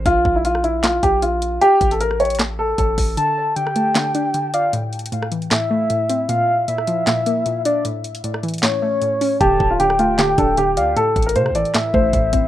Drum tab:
HH |x-----------------------x-----------x-----------x-----------x-----------x-----------x-----------|x-----------x-----x-----x-----------x--x--x--x--x-----------------------x-----------o-----------|x-----------------------x-----------x-----------x-----------x-----------x-----------x-----------|x-----------x---x---x---x-----------x-----x-----x-----------------------x-----------x-----------|
CP |------------------------------------------------x-----------------------------------------------|------------------------------------------------x-----------------------------------------------|------------------------------------------------x-----------------------------------------------|------------------------------------------------x-----------------------------------------------|
SD |------------------------------r-----------------o-----------------------------------------------|------------------------------r-----------------o-----------------------------------------------|------------------------------r-----------------o-----------------------------------------------|------------------------------r-----------------o-----------------------------------------------|
BD |o-----------o-----------------------------------------------o-----------------------------------|------------o-----------------------------------------------------------o-----------o-----------|------------------------------------------------------------------------------------------------|------------------------------------------------------------------------------------------------|

HH |x-----------------------x-----------x-----------x-----------x-----------x-----------x-----------|x-----------x-----x-----x-----------x--x--x--x--x-----------------------x-----------o-----------|x-----------------------x-----------x-----------x-----------x-----------x-----------x-----------|x-----------x---x---x---x-----------x-----x-----x-----------------------x-----------x-----------|
CP |------------------------------------------------x-----------------------------------------------|------------------------------------------------x-----------------------------------------------|------------------------------------------------x-----------------------------------------------|------------------------------------------------x-----------------------------------------------|
SD |------------------------------r-----------------o-----------------------------------------------|------------------------------r-----------------o-----------------------------------------------|------------------------------r-----------------o-----------------------------------------------|------------------------------r-----------------o-----------------------------------------------|
BD |------------------------------------------------------------------------------------------------|------------------------------------------------------------------------------------------------|o-----------o-----------------------------------------------o-----------------------------------|------------o-----------------------------------------------o-----------o-----------o-----------|